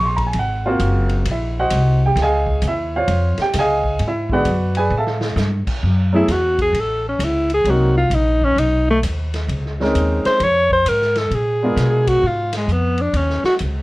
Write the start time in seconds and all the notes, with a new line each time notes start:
Already playing: A#1
0.05 C6
0.16 A#5, kick, ride
0.26 G#5
0.33 G#1, ride
0.39 F#5
0.66 A#3 C4 F4 F#4
0.79 F#1, hi-hat pedal, ride
1.09 ride
1.25 A#1, ride
1.31 E4 E5
1.59 F#4 C5 D#5 F#5
1.70 C2, hi-hat pedal, ride
2.06 G4 G5
2.16 C#2, snare, ride
2.22 G#4 D#5 F5 G#5
2.47 kick
2.62 D#2, hi-hat pedal, ride
2.68 E4 E5
2.96 F4 C5 C#5 F5
3.08 F2, ride
3.38 muted upright bass stroke, snare, ride
3.42 G4 G5
3.54 C#2, snare, hi-hat pedal, ride
3.59 G#4 D#5 F5 G#5
3.84 kick
3.99 G#2, ride
4.08 E4 E5
4.30 D3 G#3 B3 F#4 B4 D5 F#5, kick
4.45 F#2, hi-hat pedal, ride
4.75 G#4 B4 D5 G#5, ride
4.90 A2
4.97 A4 E5 F5 A5
5.07 snare
5.21 snare
5.36 G2, snare, hi-hat pedal
5.67 muted upright bass stroke, kick, crash
5.83 F#2
6.13 F#3 A3 B3 E4 G#4
6.28 E2 F#4, snare, hi-hat pedal, ride
6.59 G#4, kick, ride
6.73 A1, ride
6.80 A4
7.08 C#4
7.19 C#2, hi-hat pedal, ride
7.24 E4
7.50 ride
7.54 G#4
7.65 C2 F#3 A#3 C4, ride
7.69 D#4 F#4 A#4
7.98 F4
8.10 A#1, hi-hat pedal, ride
8.14 D#4
8.42 C#4, kick
8.56 B1 D#4, ride
8.90 A3
9.03 D#2, hi-hat pedal, ride
9.34 snare, ride
9.48 C#2, ride
9.65 snare
9.80 G#3 C4 C#4 D#4 A#4, snare
9.95 D#2, hi-hat pedal, ride
10.25 C5, muted upright bass stroke, snare, ride
10.40 F2 C#5, ride
10.70 C5, kick
10.85 G#2 A#4, hi-hat pedal, ride
11.02 snare
11.16 A4, snare, ride
11.31 A#2 G#4, ride
11.62 G#3 B3 D4 F4 A#4
11.76 B2, snare, hi-hat pedal, ride
12.07 F#4, kick, ride
12.23 G#2 F4
12.53 snare, ride
12.57 G#3
12.68 F2, hi-hat pedal
12.72 B3
12.98 D4, ride
13.13 D#2 C#4, ride
13.29 snare
13.43 F#4, muted upright bass stroke, snare
13.59 C#2, hi-hat pedal, ride